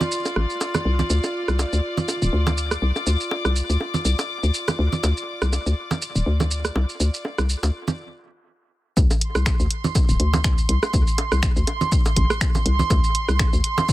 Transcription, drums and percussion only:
0.01 low conga, shaker
0.12 shaker
0.25 low bongo, shaker
0.36 cross-stick
0.50 shaker
0.61 low bongo, shaker
0.74 cross-stick, low conga, shaker
0.99 low conga, shaker
1.10 shaker
1.24 low bongo, shaker
1.48 cross-stick, shaker
1.59 low bongo, shaker
1.73 shaker
1.97 low conga, shaker
2.08 low bongo, shaker
2.22 shaker
2.47 low bongo, low conga, shaker
2.57 shaker
2.71 cross-stick, shaker
2.96 low bongo, shaker
3.07 shaker
3.20 shaker
3.31 low bongo
3.45 cross-stick, shaker
3.56 shaker
3.70 shaker
3.80 low bongo
3.94 low conga, shaker
4.05 shaker
4.19 low bongo, shaker
4.43 shaker
4.54 shaker
4.68 cross-stick, low bongo, low conga, shaker
4.92 low conga, shaker
5.03 low bongo, shaker
5.17 shaker
5.42 cross-stick, shaker
5.53 low bongo, shaker
5.66 shaker
5.91 low bongo, low conga, shaker
6.02 shaker
6.15 shaker
6.40 low bongo, low conga, shaker
6.51 shaker
6.65 cross-stick, shaker
6.76 low bongo
6.89 shaker
7.00 shaker
7.14 shaker
7.25 low bongo
7.38 cross-stick, shaker
7.49 shaker
7.63 low bongo, shaker
7.88 low conga, shaker
8.97 kick, shaker
9.11 low bongo, shaker
9.21 closed hi-hat
9.35 cross-stick, shaker
9.46 finger snap, kick, low bongo, shaker
9.60 shaker
9.70 closed hi-hat
9.84 low conga, shaker
9.95 kick, low bongo, shaker
10.09 shaker
10.20 closed hi-hat
10.33 low bongo, low conga, shaker
10.44 finger snap, kick, shaker
10.58 shaker
10.69 closed hi-hat
10.83 cross-stick, low bongo, shaker
10.94 kick, shaker
11.07 shaker
11.18 closed hi-hat, low bongo
11.32 cross-stick, shaker
11.43 finger snap, kick, shaker
11.56 shaker
11.67 closed hi-hat, low bongo
11.81 low conga, shaker
11.92 kick, shaker
12.06 low bongo, shaker
12.16 kick, closed hi-hat
12.30 cross-stick, shaker
12.41 finger snap, kick, shaker
12.55 low bongo, low conga, shaker
12.66 closed hi-hat
12.79 low conga, shaker
12.90 kick, low bongo, shaker
13.04 shaker
13.15 closed hi-hat
13.29 cross-stick, shaker
13.39 finger snap, kick, low bongo, shaker
13.53 shaker
13.64 closed hi-hat
13.78 low bongo, low conga, shaker
13.89 kick, shaker

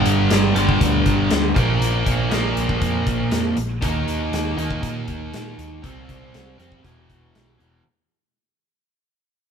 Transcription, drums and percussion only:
0.06 closed hi-hat
0.31 snare, closed hi-hat
0.56 closed hi-hat
0.69 kick
0.81 kick, closed hi-hat
1.06 kick, closed hi-hat
1.31 snare, closed hi-hat
1.56 kick, closed hi-hat
1.82 closed hi-hat
2.07 kick, closed hi-hat
2.31 snare, closed hi-hat
2.57 closed hi-hat
2.69 kick
2.82 kick, closed hi-hat
3.07 kick, closed hi-hat
3.31 snare, closed hi-hat
3.57 closed hi-hat
3.82 kick, closed hi-hat
4.08 closed hi-hat
4.33 snare, closed hi-hat
4.58 closed hi-hat
4.71 kick
4.83 kick, closed hi-hat
5.08 kick, closed hi-hat
5.34 snare, closed hi-hat
5.59 closed hi-hat
5.84 kick, closed hi-hat
6.09 kick, closed hi-hat
6.34 snare, closed hi-hat
6.60 closed hi-hat
6.72 kick
6.85 kick, closed hi-hat
7.10 kick, closed hi-hat
7.35 snare, closed hi-hat
7.60 closed hi-hat

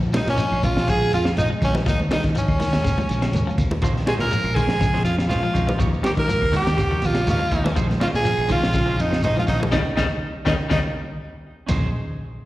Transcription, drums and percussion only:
0.02 shekere
0.13 snare, ride bell, high conga, claves, shekere
0.26 snare, ride bell, shekere
0.37 ride bell, shekere
0.51 claves, shekere
0.63 kick, ride bell, high conga, low conga, shekere
0.77 snare, shekere
0.88 kick, ride bell, claves, shekere
1.03 shekere
1.13 ride bell, shekere
1.25 snare, claves, shekere
1.37 ride bell, high conga, shekere
1.52 shekere
1.61 kick, ride bell, low conga, claves, shekere
1.75 snare, high conga, shekere
1.86 kick, ride bell, shekere
2.00 high conga, shekere
2.10 snare, ride bell, high conga, claves, shekere
2.24 kick, snare, ride bell, shekere
2.35 ride bell, shekere
2.48 kick, claves, shekere
2.60 snare, open hi-hat, high conga, low conga, shekere
2.73 snare, ride bell, shekere
2.84 kick, ride bell, claves, shekere
2.98 high conga, shekere
3.09 ride bell, low conga, shekere
3.22 snare, ride bell, claves, shekere
3.33 ride bell, high conga, shekere
3.49 shekere
3.58 kick, ride bell, low conga, claves, shekere
3.71 high conga, shekere
3.82 kick, ride bell, shekere
3.96 snare, shekere
4.07 snare, ride bell, high conga, claves, shekere
4.20 snare, ride bell, high conga, shekere
4.31 ride bell, shekere
4.44 claves, shekere
4.56 kick, ride bell, high conga, low conga, shekere
4.68 snare, shekere
4.80 kick, snare, ride bell, claves, shekere
4.94 snare, shekere
5.06 ride bell, shekere
5.18 snare, claves, shekere
5.30 ride bell, high conga, shekere
5.44 shekere
5.55 kick, ride bell, low conga, claves, shekere
5.68 high conga, shekere
5.80 kick, ride bell, shekere
5.94 shekere
6.04 snare, ride bell, high conga, claves, shekere
6.17 kick, ride bell, high conga, shekere
6.29 ride bell, shekere
6.42 kick, claves, shekere
6.53 open hi-hat, high conga, low conga, shekere
6.67 snare, ride bell, shekere
6.77 kick, ride bell, claves, shekere
6.93 shekere
7.02 snare, ride bell, low conga, shekere
7.15 snare, ride bell, claves, shekere
7.27 ride bell, high conga, shekere
7.42 shekere
7.51 kick, ride bell, low conga, claves, shekere
7.66 snare, high conga, shekere
7.76 kick, ride bell, shekere
7.90 snare, high conga, shekere
8.00 snare, ride bell, high conga, low conga, claves, shekere
8.14 snare, ride bell, shekere
8.25 ride bell, shekere
8.37 claves, shekere
8.49 kick, ride bell, high conga, low conga, shekere
8.62 snare, shekere
8.73 kick, snare, ride bell, claves, shekere
8.87 shekere
8.99 ride bell, shekere
9.12 snare, claves, shekere
9.22 ride bell, high conga, shekere
9.36 high conga, shekere
9.47 kick, snare, ride bell, low conga, claves, shekere
9.61 high conga, shekere
9.72 kick, snare, low conga, claves, shekere
9.97 kick, snare, low conga, claves, shekere
10.46 kick, snare, low conga, claves, shekere
10.70 kick, snare, low conga, claves, shekere
11.68 kick, floor tom, ride bell, low conga, claves, shekere

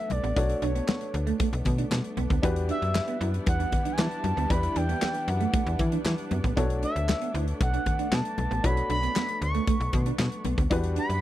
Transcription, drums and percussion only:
0.10 closed hi-hat, high conga
0.24 closed hi-hat
0.37 kick, closed hi-hat
0.49 closed hi-hat
0.62 closed hi-hat
0.76 closed hi-hat
0.89 snare, clap, high conga
1.01 closed hi-hat
1.14 closed hi-hat, muted conga
1.27 closed hi-hat
1.40 kick, closed hi-hat, muted conga
1.53 closed hi-hat
1.65 kick, closed hi-hat, muted conga, low conga
1.78 closed hi-hat
1.91 snare, clap, high conga
2.04 closed hi-hat
2.17 closed hi-hat, high conga
2.30 kick, closed hi-hat
2.43 kick, closed hi-hat
2.56 closed hi-hat
2.69 closed hi-hat
2.82 closed hi-hat
2.95 snare, clap, high conga
3.08 closed hi-hat
3.21 closed hi-hat
3.34 closed hi-hat
3.46 kick, closed hi-hat, muted conga
3.60 closed hi-hat
3.72 kick, closed hi-hat, muted conga, low conga
3.85 closed hi-hat
3.98 snare, clap, high conga
4.11 closed hi-hat
4.24 closed hi-hat, high conga
4.38 closed hi-hat
4.50 kick, closed hi-hat
4.63 closed hi-hat
4.76 closed hi-hat
4.89 closed hi-hat
5.02 snare, clap, high conga
5.14 closed hi-hat
5.28 closed hi-hat
5.41 closed hi-hat
5.53 kick, closed hi-hat, muted conga
5.67 closed hi-hat
5.79 kick, closed hi-hat, muted conga, low conga
5.92 closed hi-hat
6.05 snare, clap, high conga
6.18 closed hi-hat
6.31 closed hi-hat, high conga
6.44 kick, closed hi-hat
6.57 kick, closed hi-hat
6.70 closed hi-hat
6.83 closed hi-hat
6.96 closed hi-hat
7.09 snare, clap, high conga
7.21 closed hi-hat
7.35 closed hi-hat
7.48 closed hi-hat
7.61 kick, closed hi-hat, muted conga
7.74 closed hi-hat
7.86 kick, closed hi-hat, muted conga, low conga
7.99 closed hi-hat
8.12 snare, clap, high conga
8.25 closed hi-hat
8.38 closed hi-hat, high conga
8.52 closed hi-hat
8.64 kick, closed hi-hat
8.77 closed hi-hat
8.90 closed hi-hat
9.03 closed hi-hat
9.16 snare, clap, high conga
9.28 closed hi-hat
9.42 closed hi-hat, muted conga
9.55 closed hi-hat
9.68 kick, closed hi-hat, muted conga
9.81 closed hi-hat
9.93 kick, closed hi-hat, muted conga, low conga
10.06 closed hi-hat
10.19 snare, clap, high conga
10.32 closed hi-hat
10.45 closed hi-hat, high conga
10.58 kick, closed hi-hat
10.71 kick, closed hi-hat
10.84 closed hi-hat
10.96 closed hi-hat
11.10 closed hi-hat

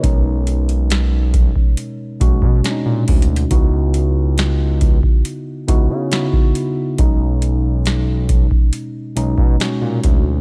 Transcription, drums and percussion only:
0.03 kick, closed hi-hat
0.47 closed hi-hat
0.69 closed hi-hat
0.90 snare, closed hi-hat
1.34 kick, closed hi-hat
1.56 kick
1.77 closed hi-hat
2.21 kick, closed hi-hat
2.42 kick
2.64 snare, closed hi-hat
3.08 kick, closed hi-hat, open hi-hat
3.22 closed hi-hat
3.36 closed hi-hat
3.51 kick, closed hi-hat
3.94 closed hi-hat
4.38 snare, closed hi-hat
4.81 kick, closed hi-hat
5.03 kick
5.25 closed hi-hat
5.68 kick, closed hi-hat
6.12 snare, closed hi-hat
6.33 kick
6.55 closed hi-hat
6.98 kick, closed hi-hat
7.42 closed hi-hat
7.86 snare, closed hi-hat
8.29 kick, closed hi-hat
8.51 kick
8.73 closed hi-hat
9.17 closed hi-hat
9.38 kick
9.60 snare, closed hi-hat
10.04 kick, closed hi-hat

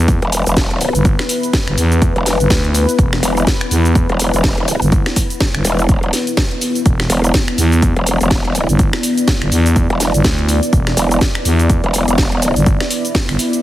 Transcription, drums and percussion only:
0.08 kick, closed hi-hat, cabasa
0.22 closed hi-hat
0.32 open hi-hat, cabasa
0.47 closed hi-hat, cabasa
0.57 kick, snare, closed hi-hat, cabasa
0.71 closed hi-hat
0.81 open hi-hat, cabasa
0.95 closed hi-hat, cabasa
1.05 kick, closed hi-hat, cabasa
1.19 finger snap, snare, closed hi-hat
1.29 open hi-hat, cabasa
1.43 closed hi-hat, cabasa
1.53 kick, snare, closed hi-hat, cabasa
1.68 finger snap, closed hi-hat
1.78 open hi-hat, cabasa
1.92 closed hi-hat, cabasa
2.02 kick, closed hi-hat, cabasa
2.16 closed hi-hat
2.26 snare, open hi-hat, cabasa
2.40 closed hi-hat, cabasa
2.50 kick, snare, closed hi-hat, cabasa
2.64 closed hi-hat
2.75 open hi-hat, cabasa
2.89 closed hi-hat, cabasa
2.99 kick, closed hi-hat, cabasa
3.13 finger snap, snare, closed hi-hat
3.23 open hi-hat, cabasa
3.37 closed hi-hat, cabasa
3.47 kick, snare, closed hi-hat, cabasa
3.61 finger snap, closed hi-hat
3.71 open hi-hat, cabasa
3.85 closed hi-hat, cabasa
3.95 kick, closed hi-hat, cabasa
4.09 closed hi-hat
4.20 open hi-hat, cabasa
4.34 closed hi-hat, cabasa
4.44 kick, snare, closed hi-hat, cabasa
4.58 closed hi-hat
4.68 open hi-hat, cabasa
4.82 closed hi-hat, cabasa
4.92 kick, closed hi-hat, cabasa
5.06 finger snap, snare, closed hi-hat
5.16 kick, open hi-hat, cabasa
5.30 closed hi-hat, cabasa
5.40 kick, snare, closed hi-hat, cabasa
5.55 finger snap, closed hi-hat
5.65 open hi-hat, cabasa
5.79 closed hi-hat, cabasa
5.89 kick, closed hi-hat, cabasa
6.03 closed hi-hat
6.13 snare, open hi-hat, cabasa
6.27 closed hi-hat, cabasa
6.37 kick, snare, closed hi-hat, cabasa
6.51 closed hi-hat
6.61 open hi-hat, cabasa
6.75 closed hi-hat, cabasa
6.86 kick, closed hi-hat, cabasa
7.00 finger snap, snare, closed hi-hat
7.10 open hi-hat, cabasa
7.24 closed hi-hat, cabasa
7.34 kick, snare, closed hi-hat, cabasa
7.48 finger snap, closed hi-hat
7.58 open hi-hat, cabasa
7.72 closed hi-hat, cabasa
7.82 kick, closed hi-hat, cabasa
7.96 closed hi-hat
8.07 open hi-hat, cabasa
8.21 closed hi-hat, cabasa
8.31 kick, snare, closed hi-hat, cabasa
8.45 closed hi-hat
8.55 open hi-hat, cabasa
8.69 closed hi-hat, cabasa
8.79 kick, closed hi-hat, cabasa
8.93 finger snap, snare, closed hi-hat
9.03 open hi-hat, cabasa
9.17 closed hi-hat, cabasa
9.28 kick, snare, closed hi-hat, cabasa
9.42 finger snap, closed hi-hat
9.52 open hi-hat, cabasa
9.66 closed hi-hat, cabasa
9.76 kick, closed hi-hat, cabasa
9.90 closed hi-hat
10.00 snare, open hi-hat, cabasa
10.14 closed hi-hat, cabasa
10.24 kick, snare, closed hi-hat, cabasa
10.39 closed hi-hat
10.49 open hi-hat, cabasa
10.63 closed hi-hat, cabasa
10.73 kick, closed hi-hat, cabasa
10.87 finger snap, snare, closed hi-hat
10.97 open hi-hat, cabasa
11.11 closed hi-hat, cabasa
11.21 kick, snare, closed hi-hat, cabasa
11.35 finger snap, closed hi-hat
11.45 open hi-hat, cabasa
11.59 closed hi-hat, cabasa
11.70 kick, closed hi-hat, cabasa
11.84 closed hi-hat
11.94 open hi-hat, cabasa
12.08 closed hi-hat, cabasa
12.18 kick, snare, closed hi-hat, cabasa
12.32 closed hi-hat
12.42 open hi-hat, cabasa
12.56 closed hi-hat, cabasa
12.66 kick, closed hi-hat, cabasa
12.80 finger snap, snare, closed hi-hat
12.91 open hi-hat, cabasa
13.05 closed hi-hat, cabasa
13.15 kick, snare, closed hi-hat, cabasa
13.29 finger snap, open hi-hat
13.39 open hi-hat, cabasa
13.53 closed hi-hat, cabasa

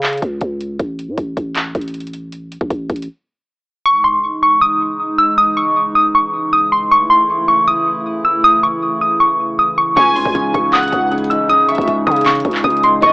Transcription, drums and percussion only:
0.03 clap, closed hi-hat
0.08 closed hi-hat
0.13 closed hi-hat
0.17 closed hi-hat
0.22 kick, closed hi-hat
0.41 kick, closed hi-hat
0.61 closed hi-hat
0.79 kick, closed hi-hat
0.99 closed hi-hat
1.18 kick, closed hi-hat
1.37 kick, closed hi-hat
1.55 clap, closed hi-hat
1.75 kick, closed hi-hat
1.81 closed hi-hat
1.88 closed hi-hat
1.94 closed hi-hat
2.00 closed hi-hat
2.07 closed hi-hat
2.13 closed hi-hat
2.32 closed hi-hat
2.52 closed hi-hat
2.61 kick
2.70 kick, closed hi-hat
2.90 kick, closed hi-hat
2.96 closed hi-hat
3.02 closed hi-hat
9.97 kick, closed hi-hat
10.16 open hi-hat
10.25 kick
10.35 kick, closed hi-hat
10.54 kick, closed hi-hat
10.73 clap, closed hi-hat
10.78 closed hi-hat
10.83 closed hi-hat
10.87 closed hi-hat
10.92 kick, closed hi-hat
11.11 closed hi-hat
11.18 closed hi-hat
11.24 closed hi-hat
11.31 closed hi-hat
11.49 closed hi-hat
11.69 closed hi-hat
11.75 kick, closed hi-hat
11.81 closed hi-hat
11.88 kick, closed hi-hat
12.07 kick, closed hi-hat
12.12 closed hi-hat
12.16 closed hi-hat
12.21 closed hi-hat
12.26 clap, closed hi-hat
12.31 closed hi-hat
12.35 closed hi-hat
12.40 closed hi-hat
12.45 kick, closed hi-hat
12.51 clap, closed hi-hat
12.58 closed hi-hat
12.64 kick, closed hi-hat
12.70 closed hi-hat
12.77 closed hi-hat
12.83 closed hi-hat
13.02 kick, closed hi-hat

